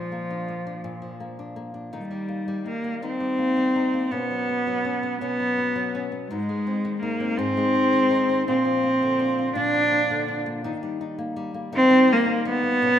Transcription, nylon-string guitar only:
0.00 0.83 A#2 medium
0.00 1.01 F3 soft
0.12 0.48 A#3 soft
0.30 0.65 D4 medium
0.48 1.20 A#3 soft
0.67 1.38 D4 medium
0.84 2.01 A#2 medium
1.02 2.01 F3 soft
1.20 1.56 A#3 soft
1.39 1.73 D4 medium
1.56 2.28 A#3 soft
1.74 1.93 D4 soft
1.93 3.01 D#3 medium
1.93 2.64 D#4 soft
2.11 2.47 G3 soft
2.29 2.83 A#3 soft
2.48 3.19 G3 medium
2.66 3.02 D#4 soft
2.84 3.37 A#3 soft
3.02 4.11 D#3 medium
3.02 3.75 D#4 medium
3.20 3.56 G3 soft
3.38 3.93 A#3 soft
3.57 4.19 G3 medium
3.76 4.12 D#4 medium
3.94 4.19 A#3 soft
4.11 5.20 B2 medium
4.11 4.83 C#4 medium
4.31 4.66 F#3 soft
4.49 5.02 B3 soft
4.67 5.38 F#3 medium
4.85 5.21 C#4 medium
5.03 5.56 B3 medium
5.21 6.30 B2 medium
5.21 5.94 C#4 medium
5.40 5.75 F#3 soft
5.58 6.11 B3 soft
5.76 6.38 F#3 medium
5.95 6.31 C#4 medium
6.12 6.37 B3 medium
6.31 7.37 G#2 medium
6.31 7.01 D#4 soft
6.49 7.56 G#3 soft
6.67 7.19 C4 soft
6.85 7.92 D#3 medium
7.03 7.38 D#4 medium
7.20 7.74 C4 medium
7.38 8.47 G#2 medium
7.38 8.10 D#4 medium
7.57 8.55 G#3 medium
7.75 8.29 C4 medium
7.93 8.55 D#3 medium
8.11 8.48 D#4 medium
8.30 8.55 C4 medium
8.48 9.54 A#2 medium
8.48 9.18 D4 soft
8.65 9.73 F3 medium
8.83 9.38 A#3 soft
9.02 10.09 D3 medium
9.19 9.55 D4 medium
9.39 9.91 A#3 medium
9.55 10.72 A#2 medium
9.55 10.27 D4 medium
9.74 10.73 F3 medium
9.91 10.46 A#3 soft
10.10 10.64 D3 medium
10.28 10.65 D4 medium
10.46 11.18 A#3 medium
10.64 11.71 D#3 medium
10.64 11.00 D#4 medium
10.83 11.35 G3 medium
11.01 11.72 D#4 medium
11.18 11.53 A#3 medium
11.36 11.89 G3 medium
11.54 12.25 A#3 medium
11.73 12.82 D#3 medium
11.73 12.06 D#4 medium
11.91 12.44 G3 medium
12.08 12.82 D#4 medium
12.26 12.62 A#3 medium
12.45 12.90 G3 medium
12.63 12.90 A#3 soft
12.82 12.99 B2 medium
12.82 12.99 C#4 medium

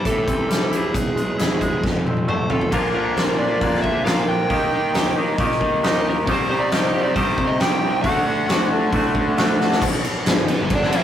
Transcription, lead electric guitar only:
0.06 0.75 A4 medium
0.76 1.81 G#4 medium
2.29 2.51 C5 medium
2.51 2.71 A4 medium
2.74 2.94 A#4 medium
2.95 3.36 A#4 medium
3.38 3.82 D5 medium
3.82 4.04 E5 medium
4.05 4.28 F5 medium
4.28 5.13 G5 loud
5.87 6.08 D#5 medium
6.09 6.14 A#4 medium
6.32 6.50 C5 medium
6.51 6.61 C5 medium
6.60 6.72 D5 medium
6.73 7.02 D#5 medium
7.03 7.14 D5 medium
7.14 7.49 C5 medium
7.47 7.60 D#5 loud
7.60 8.02 G5 loud
8.03 8.66 F#5 medium
10.50 10.70 B3 medium
10.50 10.73 B4 medium
10.73 10.93 D4 medium
10.73 10.94 D5 loud
10.96 11.04 E4 medium
10.96 11.04 E5 loud

